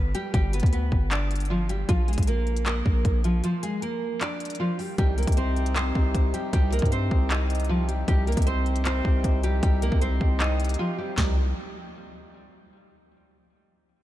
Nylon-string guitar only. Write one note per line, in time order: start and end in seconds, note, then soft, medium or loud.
0.00 0.12 B3 medium
0.00 0.11 B4 medium
0.15 0.33 G3 medium
0.15 0.33 G4 medium
0.34 0.52 G3 medium
0.34 0.52 G4 loud
0.54 0.72 B3 medium
0.54 0.71 B4 medium
0.73 1.09 B3 medium
0.73 1.09 B4 medium
1.11 1.48 D4 medium
1.11 1.48 D5 medium
1.50 1.69 F3 medium
1.50 1.68 F4 medium
1.70 1.88 G3 medium
1.70 1.87 G4 medium
1.89 2.07 F3 medium
1.89 2.07 F4 loud
2.08 2.27 G#3 medium
2.08 2.26 G#4 medium
2.28 2.64 A#3 medium
2.28 2.64 A#4 medium
2.66 3.21 A#3 medium
2.66 3.21 A#4 medium
3.24 3.43 F3 medium
3.24 3.42 F4 medium
3.44 3.62 F3 medium
3.44 3.62 F4 loud
3.63 3.81 G#3 medium
3.63 3.81 G#4 medium
3.82 4.19 A#3 medium
3.82 4.19 A#4 medium
4.21 4.57 D4 medium
4.21 4.58 D5 medium
4.60 4.78 F3 medium
4.60 4.78 F4 medium
4.79 4.98 G3 medium
4.79 4.97 G4 medium
4.98 5.17 G3 medium
4.98 5.16 G4 loud
5.18 5.36 A#3 medium
5.18 5.36 A#4 medium
5.37 5.74 C4 medium
5.37 5.73 C5 medium
5.76 6.31 C4 medium
5.76 6.30 C5 medium
6.34 6.52 G3 medium
6.34 6.52 G4 medium
6.53 6.72 G3 medium
6.53 6.71 G4 loud
6.73 6.91 A#3 medium
6.73 6.91 A#4 medium
6.92 7.29 C4 medium
6.92 7.28 C5 medium
7.31 7.67 D#4 medium
7.31 7.67 D#5 medium
7.69 7.88 F3 medium
7.69 7.87 F4 medium
7.89 8.07 G3 medium
7.89 8.07 G4 medium
8.08 8.27 G3 medium
8.08 8.26 G4 loud
8.27 8.46 A#3 medium
8.27 8.45 A#4 medium
8.47 8.84 C4 medium
8.47 8.83 C5 medium
8.85 9.40 C4 medium
8.85 9.40 C5 medium
9.44 9.62 G3 medium
9.44 9.62 G4 medium
9.63 9.81 G3 medium
9.63 9.81 G4 loud
9.82 10.01 A#3 medium
9.82 10.00 A#4 medium
10.02 10.38 C4 medium
10.02 10.38 C5 medium
10.40 10.77 D#4 medium
10.40 10.77 D#5 medium
10.79 10.97 F3 medium
10.79 10.97 F4 loud
10.98 11.17 G3 medium
10.98 11.16 G4 medium
11.18 11.36 G3 medium